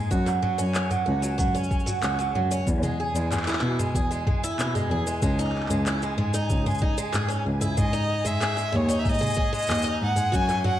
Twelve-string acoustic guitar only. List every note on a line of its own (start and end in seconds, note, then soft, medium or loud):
0.11 0.26 F#4 medium
0.26 0.41 F#3 medium
0.42 0.58 F#3 medium
0.58 0.89 C#4 medium
0.91 1.05 F#3 medium
1.06 1.21 F#4 medium
1.22 1.37 F#3 medium
1.38 1.54 F#3 medium
1.55 1.85 C#4 medium
1.86 2.01 F#3 medium
2.02 2.17 F#4 medium
2.19 2.33 F#3 medium
2.35 2.50 F#3 medium
2.51 2.67 C#4 medium
2.83 2.97 G#3 medium
3.00 3.14 G#4 medium
3.16 3.30 G#3 medium
3.32 3.46 G#3 medium
3.47 3.77 E4 loud
3.79 3.93 G#3 medium
3.95 4.09 G#4 medium
4.11 4.25 G#3 medium
4.27 4.42 G#3 medium
4.44 4.73 E4 medium
4.75 4.89 G#3 medium
4.91 5.05 G#4 medium
5.07 5.21 G#3 medium
5.22 5.38 G#3 medium
5.39 5.69 D#4 medium
5.70 5.85 G#3 medium
5.86 6.01 E4 medium
6.03 6.17 G#3 medium
6.18 6.33 G#3 medium
6.34 6.64 D#4 medium
6.66 6.80 G#3 medium
6.82 6.96 D#4 medium
6.98 7.13 G#3 medium
7.13 7.28 G#4 medium
7.28 7.43 C#4 medium
7.61 7.76 E4 medium
7.77 7.93 G#3 medium
7.93 8.24 D#4 medium
8.24 8.39 G#3 medium
8.41 8.56 G#4 medium
8.57 8.71 G#3 medium
8.72 8.88 G#3 medium
8.89 9.19 D#4 medium
9.21 9.35 G#3 medium
9.37 9.51 G#4 medium
9.53 9.67 G#3 medium
9.69 9.84 G#3 medium
9.84 10.15 D#4 medium
10.16 10.31 G#3 medium
10.32 10.47 F#4 medium
10.49 10.63 F#3 medium
10.64 10.80 F#3 medium